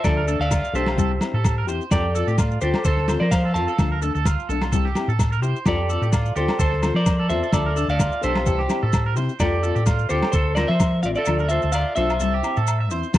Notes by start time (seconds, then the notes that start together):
Already playing: A4
0.04 D2 F3 A3 D4 A4 D5, kick, snare, low agogo, maracas
0.17 A#4
0.27 A3 D4 A4, maracas
0.39 D2 A4 D5 F5, maracas
0.51 F4, kick, snare, low agogo, maracas
0.65 maracas
0.73 B1 A3 D4 G4 A4 C5, snare, maracas
0.86 F4, snare, low agogo
0.96 C2 G3 C4 E4 G4 A4, kick, maracas
1.11 muted clean electric guitar stroke
1.20 C4 E4 G4, snare, low agogo, maracas
1.34 A2 A4
1.44 kick, snare, low agogo, maracas
1.58 A#4
1.67 E2 C4 E4 G4 C5, maracas
1.81 maracas
1.91 F2 F3 C4 F4 G4 A4 D5, kick, snare, low agogo, maracas
2.15 F4 A4, maracas
2.19 C4
2.27 A2 G4, maracas
2.38 F4, kick, snare, low agogo, maracas
2.51 maracas
2.61 D2 C4 F4 G4 A4 C5, snare, maracas
2.74 snare, low agogo
2.85 D2 A4 C5, kick, maracas
2.97 snare
3.08 C4 F4 A4 C5, snare, low agogo, maracas
3.20 F3 A#4 C5 D5
3.31 C5 F5, kick, snare, low agogo, maracas
3.45 A4
3.54 F2 F4 A4 F5 A5, maracas
3.58 C4
3.68 A4, maracas
3.79 D2 F3 A3 D4 A4, kick, snare, low agogo, maracas
3.92 A#4
4.02 A3 D4 A4, maracas
4.15 D2 A4, maracas
4.25 F4, kick, snare, low agogo, maracas
4.39 maracas
4.49 B1 A3 D4 A4, maracas
4.62 F4, snare, low agogo, maracas
4.72 C2 G3 C4 E4 G4 A4, kick, maracas
4.85 G4, snare
4.95 C4 E4 G4, snare, low agogo, maracas
5.08 A2 A4, maracas
5.19 kick, snare, low agogo, maracas
5.32 A#4, maracas
5.42 C3 E4 G4 C5, muted nylon-string guitar stroke, maracas
5.56 maracas
5.66 F2 F3 C4 F4 G4 A4 D5, kick, snare, low agogo, maracas
5.89 C4 F4 A4, muted nylon-string guitar stroke, maracas
6.02 A2 G4, maracas
6.12 F4, kick, snare, low agogo, maracas
6.26 maracas
6.36 D2 F4 G4 A4 C5, maracas
6.40 C4
6.48 snare, low agogo
6.59 D2 A4 C5, kick, maracas
6.72 snare
6.82 C4 F4 A4 C5, snare, low agogo, maracas
6.94 F3 A#4 C5 D5
7.06 kick, snare, low agogo, maracas
7.19 A4
7.29 E2 C4 F4 A4 C5 E5, snare, maracas
7.43 A4, maracas
7.53 D2 F3 A3 D4 A4 D5, kick, snare, low agogo, maracas
7.66 A#4
7.76 D4 A4, maracas
7.88 D2 A4 D5 F5, maracas
7.99 F4, kick, snare, low agogo, maracas
8.12 maracas
8.21 B1 A3 D4 G4 A4 C5, snare, maracas
8.35 F4, snare, low agogo
8.45 C2 E3 C4 E4 G4 A4, kick, maracas
8.59 G4, snare
8.68 C4 E4 G4, snare, low agogo, maracas
8.83 A2 A4
8.93 kick, snare, low agogo, maracas
9.06 A#4
9.16 C3 C4 E4 G4 C5, maracas
9.29 maracas
9.40 F2 A3 F4 G4 A4 D5, muted nylon-string guitar stroke, kick, snare, low agogo, maracas
9.63 C4 F4 A4, maracas
9.75 A2 G4, maracas
9.86 F4, kick, snare, low agogo, maracas
9.99 maracas
10.09 D2 C4 F4 G4 A4 C5, maracas
10.22 snare, low agogo
10.32 D2 A4 C5, kick, maracas
10.55 F4 A#4 C5 D5, snare, low agogo, maracas
10.60 C4
10.68 F3 C5 E5
10.80 kick, snare, low agogo, maracas
11.03 A1 C4 F4 D5 F5, maracas
11.15 A4 D5, maracas
11.26 D2 F3 A3 D4 F4, low agogo, maracas
11.39 A#4, maracas
11.48 F4 A4 C5 E5, maracas
11.53 A3
11.62 D2 A4, maracas
11.72 F4 D5 F5, low agogo, maracas
11.96 B1 A3 D4 F4 A4 C5 E5, maracas
12.09 F4, low agogo, maracas
12.20 C2 G3 C4 E4 A4, maracas
12.34 G4
12.43 C4 E4, low agogo, maracas
12.57 A2 A4, maracas
12.67 low agogo, maracas
12.80 E5
12.91 E2 C4 E4 C5, maracas
13.03 maracas
13.13 F2 F3 C4, kick, snare, crash, low agogo, maracas